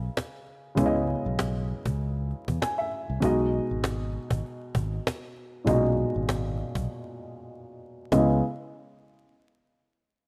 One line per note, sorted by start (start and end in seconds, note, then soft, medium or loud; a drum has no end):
0.00 0.72 C#3 medium
0.00 0.73 G#3 medium
0.00 0.73 B3 medium
0.00 0.74 E4 medium
0.00 0.77 D#5 medium
0.17 cajon slap loud
0.17 cajon slap medium
0.46 cajon slap soft
0.75 1.14 C#2 loud
0.75 3.17 C#3 medium
0.75 3.17 G#3 medium
0.75 3.18 B3 medium
0.75 3.19 E4 medium
0.75 cajon bass loud
0.75 cajon slap medium
0.79 0.86 C#5 medium
0.86 3.22 D#5 medium
1.07 cajon slap soft
1.25 1.72 B1 loud
1.25 cajon slap soft
1.39 cajon slap loud
1.39 cajon slap medium
1.68 cajon slap soft
1.86 2.32 C#2 medium
1.86 cajon bass medium
2.01 cajon slap soft
2.31 cajon slap soft
2.48 2.58 E2 medium
2.48 cajon bass medium
2.62 2.78 G#5 medium
2.62 cajon slap loud
2.62 cajon slap medium
2.78 3.19 E5 medium
2.92 cajon slap soft
3.10 3.19 C2 medium
3.20 3.59 B1 loud
3.20 5.62 B2 medium
3.20 5.63 G#3 medium
3.20 5.63 D#4 medium
3.20 5.64 F#4 medium
3.20 cajon bass loud
3.20 cajon slap medium
3.25 5.64 D#5 medium
3.52 cajon slap soft
3.70 4.17 G#1 medium
3.70 cajon slap soft
3.84 cajon slap loud
4.13 cajon slap soft
4.30 4.41 G#1 medium
4.30 cajon bass loud
4.46 cajon slap medium
4.75 4.98 G#1 loud
4.75 cajon bass loud
5.07 cajon slap loud
5.07 cajon slap medium
5.36 cajon slap soft
5.65 6.03 B1 loud
5.65 5.73 A#2 medium
5.65 8.07 G#3 medium
5.65 8.08 D#4 medium
5.65 8.08 F#4 medium
5.65 cajon bass loud
5.65 cajon slap medium
5.69 8.10 B2 medium
5.69 8.09 D#5 medium
5.97 cajon slap soft
6.15 6.62 G#1 medium
6.15 cajon slap soft
6.29 cajon slap loud
6.58 cajon slap soft
6.75 6.86 B1 loud
6.75 cajon bass loud
8.12 8.41 C#2 loud
8.12 8.40 C#3 medium
8.12 8.40 G#3 medium
8.12 8.40 B3 medium
8.12 8.40 E4 medium
8.12 8.40 D#5 medium
8.12 cajon bass loud
8.12 cajon slap medium